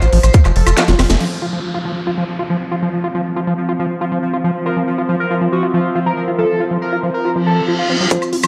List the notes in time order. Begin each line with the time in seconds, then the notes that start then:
Already playing: F3
0.02 A1 F4, closed hi-hat, maracas
0.13 A1 F3, open hi-hat
0.23 A1 C5, closed hi-hat, high woodblock, maracas
0.34 F4, kick, closed hi-hat, maracas
0.45 F1 F3, clap, closed hi-hat, high woodblock, maracas
0.56 F1 A4, open hi-hat
0.66 F1 F4, closed hi-hat, high woodblock, maracas
0.77 F4, snare, clap, closed hi-hat, maracas
0.88 F1 F#3 F4, snare, closed hi-hat, maracas
0.99 F1 C4, snare, open hi-hat, high woodblock
1.10 F1 A3, snare, closed hi-hat, maracas
1.20 F3 C4, crash, downlifter
1.42 F4
1.51 F3 F4
1.65 C6
1.74 F4
1.85 F3
2.04 F4 F5
2.18 F3
2.39 F4
2.50 F3
2.72 F4
2.82 F3
3.04 F4
3.15 F3
3.36 F4
3.47 F3
3.69 F4
3.79 F3
4.01 F4
4.12 F3
4.33 F4
4.44 F3
4.66 F4 A#4
4.77 F3
4.84 E5
4.98 F4
5.09 F3
5.20 A#4
5.31 F4
5.41 F3
5.52 F#4
5.63 F4
5.74 F3 F4
5.95 F4
6.06 F3 A#4
6.28 F4
6.38 F3 A4
6.60 F4
6.71 F3
6.82 A#4
6.92 F4
7.03 F3
7.14 A#4
7.25 F4, reverse cymbal
7.36 F3
7.46 A4
7.57 E3
7.68 F4
7.79 F4
7.90 C4
8.00 F#3
8.11 F3 C5, kick, closed hi-hat, riser, maracas
8.22 F5, high woodblock, maracas
8.33 F4, open hi-hat
8.43 F3, closed hi-hat, high woodblock, maracas